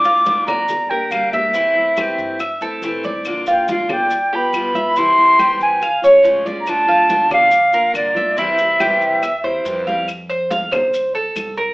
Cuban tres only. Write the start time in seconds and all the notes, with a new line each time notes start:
0.05 F4
0.48 D5
0.91 A#4
1.34 E5
1.55 E4
1.98 G4
2.40 E5
2.62 A4
3.05 D5
3.48 F4
3.90 D5
4.33 G4
4.75 E5
4.97 E4
5.39 G4
5.82 F5
6.04 C#5
6.46 D5
6.88 F4
7.31 D5
7.74 A#4
8.16 E5
8.38 E4
8.80 G4
9.23 E5
9.44 C5
9.87 F5
10.30 C5
10.50 F5
10.72 C5
11.15 A4
11.57 A#4